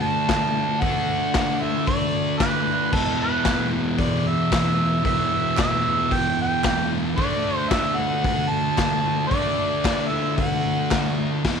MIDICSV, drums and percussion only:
0, 0, Header, 1, 2, 480
1, 0, Start_track
1, 0, Tempo, 530973
1, 741, Time_signature, 4, 2, 24, 8
1, 10486, End_track
2, 0, Start_track
2, 0, Title_t, "Drums"
2, 259, Note_on_c, 9, 46, 66
2, 260, Note_on_c, 9, 38, 118
2, 262, Note_on_c, 9, 36, 116
2, 274, Note_on_c, 9, 39, 102
2, 349, Note_off_c, 9, 46, 0
2, 351, Note_off_c, 9, 38, 0
2, 353, Note_off_c, 9, 36, 0
2, 365, Note_off_c, 9, 39, 0
2, 734, Note_on_c, 9, 46, 66
2, 741, Note_on_c, 9, 36, 118
2, 825, Note_off_c, 9, 46, 0
2, 831, Note_off_c, 9, 36, 0
2, 1212, Note_on_c, 9, 46, 70
2, 1214, Note_on_c, 9, 38, 117
2, 1218, Note_on_c, 9, 36, 117
2, 1227, Note_on_c, 9, 39, 100
2, 1302, Note_off_c, 9, 46, 0
2, 1304, Note_off_c, 9, 38, 0
2, 1308, Note_off_c, 9, 36, 0
2, 1317, Note_off_c, 9, 39, 0
2, 1686, Note_on_c, 9, 46, 69
2, 1695, Note_on_c, 9, 36, 118
2, 1776, Note_off_c, 9, 46, 0
2, 1785, Note_off_c, 9, 36, 0
2, 2170, Note_on_c, 9, 46, 65
2, 2171, Note_on_c, 9, 36, 120
2, 2172, Note_on_c, 9, 38, 121
2, 2184, Note_on_c, 9, 39, 101
2, 2260, Note_off_c, 9, 46, 0
2, 2262, Note_off_c, 9, 36, 0
2, 2262, Note_off_c, 9, 38, 0
2, 2274, Note_off_c, 9, 39, 0
2, 2644, Note_on_c, 9, 49, 100
2, 2647, Note_on_c, 9, 36, 119
2, 2735, Note_off_c, 9, 49, 0
2, 2738, Note_off_c, 9, 36, 0
2, 3117, Note_on_c, 9, 46, 64
2, 3119, Note_on_c, 9, 38, 120
2, 3125, Note_on_c, 9, 36, 125
2, 3138, Note_on_c, 9, 39, 105
2, 3207, Note_off_c, 9, 46, 0
2, 3209, Note_off_c, 9, 38, 0
2, 3215, Note_off_c, 9, 36, 0
2, 3228, Note_off_c, 9, 39, 0
2, 3599, Note_on_c, 9, 46, 64
2, 3602, Note_on_c, 9, 36, 109
2, 3689, Note_off_c, 9, 46, 0
2, 3693, Note_off_c, 9, 36, 0
2, 4085, Note_on_c, 9, 36, 123
2, 4089, Note_on_c, 9, 46, 65
2, 4091, Note_on_c, 9, 38, 117
2, 4094, Note_on_c, 9, 39, 107
2, 4175, Note_off_c, 9, 36, 0
2, 4180, Note_off_c, 9, 46, 0
2, 4181, Note_off_c, 9, 38, 0
2, 4184, Note_off_c, 9, 39, 0
2, 4564, Note_on_c, 9, 36, 120
2, 4567, Note_on_c, 9, 46, 63
2, 4655, Note_off_c, 9, 36, 0
2, 4657, Note_off_c, 9, 46, 0
2, 5038, Note_on_c, 9, 39, 108
2, 5047, Note_on_c, 9, 36, 126
2, 5048, Note_on_c, 9, 46, 68
2, 5050, Note_on_c, 9, 38, 115
2, 5128, Note_off_c, 9, 39, 0
2, 5137, Note_off_c, 9, 36, 0
2, 5138, Note_off_c, 9, 46, 0
2, 5140, Note_off_c, 9, 38, 0
2, 5527, Note_on_c, 9, 36, 114
2, 5528, Note_on_c, 9, 46, 68
2, 5617, Note_off_c, 9, 36, 0
2, 5618, Note_off_c, 9, 46, 0
2, 6004, Note_on_c, 9, 39, 105
2, 6005, Note_on_c, 9, 46, 67
2, 6006, Note_on_c, 9, 38, 125
2, 6007, Note_on_c, 9, 36, 121
2, 6094, Note_off_c, 9, 39, 0
2, 6095, Note_off_c, 9, 46, 0
2, 6097, Note_off_c, 9, 36, 0
2, 6097, Note_off_c, 9, 38, 0
2, 6488, Note_on_c, 9, 36, 116
2, 6488, Note_on_c, 9, 46, 70
2, 6579, Note_off_c, 9, 36, 0
2, 6579, Note_off_c, 9, 46, 0
2, 6969, Note_on_c, 9, 46, 69
2, 6970, Note_on_c, 9, 36, 126
2, 6971, Note_on_c, 9, 38, 117
2, 6976, Note_on_c, 9, 39, 107
2, 7060, Note_off_c, 9, 46, 0
2, 7061, Note_off_c, 9, 36, 0
2, 7062, Note_off_c, 9, 38, 0
2, 7066, Note_off_c, 9, 39, 0
2, 7453, Note_on_c, 9, 36, 114
2, 7454, Note_on_c, 9, 46, 60
2, 7543, Note_off_c, 9, 36, 0
2, 7545, Note_off_c, 9, 46, 0
2, 7936, Note_on_c, 9, 36, 116
2, 7938, Note_on_c, 9, 46, 64
2, 7940, Note_on_c, 9, 38, 117
2, 7940, Note_on_c, 9, 39, 96
2, 8026, Note_off_c, 9, 36, 0
2, 8028, Note_off_c, 9, 46, 0
2, 8030, Note_off_c, 9, 38, 0
2, 8030, Note_off_c, 9, 39, 0
2, 8418, Note_on_c, 9, 36, 110
2, 8422, Note_on_c, 9, 46, 66
2, 8508, Note_off_c, 9, 36, 0
2, 8512, Note_off_c, 9, 46, 0
2, 8900, Note_on_c, 9, 36, 121
2, 8904, Note_on_c, 9, 39, 93
2, 8904, Note_on_c, 9, 46, 67
2, 8906, Note_on_c, 9, 38, 123
2, 8991, Note_off_c, 9, 36, 0
2, 8994, Note_off_c, 9, 46, 0
2, 8995, Note_off_c, 9, 39, 0
2, 8996, Note_off_c, 9, 38, 0
2, 9383, Note_on_c, 9, 36, 120
2, 9385, Note_on_c, 9, 46, 65
2, 9473, Note_off_c, 9, 36, 0
2, 9475, Note_off_c, 9, 46, 0
2, 9862, Note_on_c, 9, 46, 69
2, 9863, Note_on_c, 9, 39, 93
2, 9864, Note_on_c, 9, 38, 116
2, 9865, Note_on_c, 9, 36, 115
2, 9952, Note_off_c, 9, 46, 0
2, 9954, Note_off_c, 9, 38, 0
2, 9954, Note_off_c, 9, 39, 0
2, 9955, Note_off_c, 9, 36, 0
2, 10347, Note_on_c, 9, 36, 102
2, 10347, Note_on_c, 9, 49, 107
2, 10349, Note_on_c, 9, 38, 103
2, 10437, Note_off_c, 9, 36, 0
2, 10437, Note_off_c, 9, 49, 0
2, 10439, Note_off_c, 9, 38, 0
2, 10486, End_track
0, 0, End_of_file